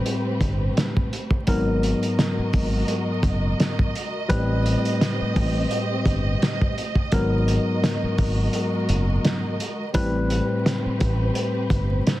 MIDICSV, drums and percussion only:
0, 0, Header, 1, 2, 480
1, 0, Start_track
1, 0, Tempo, 705882
1, 1004, Time_signature, 4, 2, 24, 8
1, 8296, End_track
2, 0, Start_track
2, 0, Title_t, "Drums"
2, 39, Note_on_c, 9, 42, 83
2, 107, Note_off_c, 9, 42, 0
2, 276, Note_on_c, 9, 36, 98
2, 281, Note_on_c, 9, 42, 83
2, 344, Note_off_c, 9, 36, 0
2, 349, Note_off_c, 9, 42, 0
2, 525, Note_on_c, 9, 42, 92
2, 528, Note_on_c, 9, 38, 114
2, 529, Note_on_c, 9, 40, 94
2, 593, Note_off_c, 9, 42, 0
2, 596, Note_off_c, 9, 38, 0
2, 597, Note_off_c, 9, 40, 0
2, 657, Note_on_c, 9, 36, 98
2, 725, Note_off_c, 9, 36, 0
2, 768, Note_on_c, 9, 42, 79
2, 836, Note_off_c, 9, 42, 0
2, 888, Note_on_c, 9, 36, 99
2, 956, Note_off_c, 9, 36, 0
2, 999, Note_on_c, 9, 42, 108
2, 1003, Note_on_c, 9, 36, 111
2, 1067, Note_off_c, 9, 42, 0
2, 1071, Note_off_c, 9, 36, 0
2, 1246, Note_on_c, 9, 42, 80
2, 1314, Note_off_c, 9, 42, 0
2, 1378, Note_on_c, 9, 42, 59
2, 1446, Note_off_c, 9, 42, 0
2, 1487, Note_on_c, 9, 38, 121
2, 1488, Note_on_c, 9, 40, 95
2, 1489, Note_on_c, 9, 42, 97
2, 1555, Note_off_c, 9, 38, 0
2, 1556, Note_off_c, 9, 40, 0
2, 1557, Note_off_c, 9, 42, 0
2, 1722, Note_on_c, 9, 46, 60
2, 1725, Note_on_c, 9, 36, 93
2, 1790, Note_off_c, 9, 46, 0
2, 1793, Note_off_c, 9, 36, 0
2, 1959, Note_on_c, 9, 42, 85
2, 2027, Note_off_c, 9, 42, 0
2, 2196, Note_on_c, 9, 36, 99
2, 2202, Note_on_c, 9, 42, 85
2, 2264, Note_off_c, 9, 36, 0
2, 2270, Note_off_c, 9, 42, 0
2, 2446, Note_on_c, 9, 42, 97
2, 2449, Note_on_c, 9, 38, 117
2, 2450, Note_on_c, 9, 40, 92
2, 2514, Note_off_c, 9, 42, 0
2, 2517, Note_off_c, 9, 38, 0
2, 2518, Note_off_c, 9, 40, 0
2, 2578, Note_on_c, 9, 36, 99
2, 2646, Note_off_c, 9, 36, 0
2, 2689, Note_on_c, 9, 42, 79
2, 2757, Note_off_c, 9, 42, 0
2, 2922, Note_on_c, 9, 42, 105
2, 2924, Note_on_c, 9, 36, 114
2, 2990, Note_off_c, 9, 42, 0
2, 2992, Note_off_c, 9, 36, 0
2, 3167, Note_on_c, 9, 42, 78
2, 3235, Note_off_c, 9, 42, 0
2, 3300, Note_on_c, 9, 42, 58
2, 3368, Note_off_c, 9, 42, 0
2, 3409, Note_on_c, 9, 38, 120
2, 3410, Note_on_c, 9, 40, 93
2, 3411, Note_on_c, 9, 42, 98
2, 3477, Note_off_c, 9, 38, 0
2, 3478, Note_off_c, 9, 40, 0
2, 3479, Note_off_c, 9, 42, 0
2, 3644, Note_on_c, 9, 46, 64
2, 3646, Note_on_c, 9, 36, 96
2, 3712, Note_off_c, 9, 46, 0
2, 3714, Note_off_c, 9, 36, 0
2, 3881, Note_on_c, 9, 42, 83
2, 3949, Note_off_c, 9, 42, 0
2, 4118, Note_on_c, 9, 36, 105
2, 4124, Note_on_c, 9, 42, 84
2, 4186, Note_off_c, 9, 36, 0
2, 4192, Note_off_c, 9, 42, 0
2, 4368, Note_on_c, 9, 42, 92
2, 4371, Note_on_c, 9, 38, 115
2, 4372, Note_on_c, 9, 40, 92
2, 4436, Note_off_c, 9, 42, 0
2, 4439, Note_off_c, 9, 38, 0
2, 4440, Note_off_c, 9, 40, 0
2, 4498, Note_on_c, 9, 36, 96
2, 4566, Note_off_c, 9, 36, 0
2, 4609, Note_on_c, 9, 42, 80
2, 4677, Note_off_c, 9, 42, 0
2, 4729, Note_on_c, 9, 36, 99
2, 4797, Note_off_c, 9, 36, 0
2, 4839, Note_on_c, 9, 42, 111
2, 4844, Note_on_c, 9, 36, 113
2, 4907, Note_off_c, 9, 42, 0
2, 4912, Note_off_c, 9, 36, 0
2, 5086, Note_on_c, 9, 42, 81
2, 5154, Note_off_c, 9, 42, 0
2, 5328, Note_on_c, 9, 38, 119
2, 5329, Note_on_c, 9, 40, 95
2, 5330, Note_on_c, 9, 42, 94
2, 5396, Note_off_c, 9, 38, 0
2, 5397, Note_off_c, 9, 40, 0
2, 5398, Note_off_c, 9, 42, 0
2, 5563, Note_on_c, 9, 46, 63
2, 5566, Note_on_c, 9, 36, 98
2, 5631, Note_off_c, 9, 46, 0
2, 5634, Note_off_c, 9, 36, 0
2, 5801, Note_on_c, 9, 42, 82
2, 5869, Note_off_c, 9, 42, 0
2, 6043, Note_on_c, 9, 42, 86
2, 6111, Note_off_c, 9, 42, 0
2, 6287, Note_on_c, 9, 42, 94
2, 6290, Note_on_c, 9, 38, 115
2, 6291, Note_on_c, 9, 40, 93
2, 6355, Note_off_c, 9, 42, 0
2, 6358, Note_off_c, 9, 38, 0
2, 6359, Note_off_c, 9, 40, 0
2, 6529, Note_on_c, 9, 42, 80
2, 6597, Note_off_c, 9, 42, 0
2, 6760, Note_on_c, 9, 42, 108
2, 6765, Note_on_c, 9, 36, 109
2, 6828, Note_off_c, 9, 42, 0
2, 6833, Note_off_c, 9, 36, 0
2, 7005, Note_on_c, 9, 42, 81
2, 7073, Note_off_c, 9, 42, 0
2, 7248, Note_on_c, 9, 38, 121
2, 7249, Note_on_c, 9, 40, 95
2, 7250, Note_on_c, 9, 42, 97
2, 7316, Note_off_c, 9, 38, 0
2, 7317, Note_off_c, 9, 40, 0
2, 7318, Note_off_c, 9, 42, 0
2, 7483, Note_on_c, 9, 42, 88
2, 7486, Note_on_c, 9, 36, 96
2, 7551, Note_off_c, 9, 42, 0
2, 7554, Note_off_c, 9, 36, 0
2, 7720, Note_on_c, 9, 42, 82
2, 7788, Note_off_c, 9, 42, 0
2, 7957, Note_on_c, 9, 36, 103
2, 7962, Note_on_c, 9, 42, 83
2, 8025, Note_off_c, 9, 36, 0
2, 8030, Note_off_c, 9, 42, 0
2, 8206, Note_on_c, 9, 42, 94
2, 8209, Note_on_c, 9, 38, 113
2, 8210, Note_on_c, 9, 40, 93
2, 8274, Note_off_c, 9, 42, 0
2, 8277, Note_off_c, 9, 38, 0
2, 8278, Note_off_c, 9, 40, 0
2, 8296, End_track
0, 0, End_of_file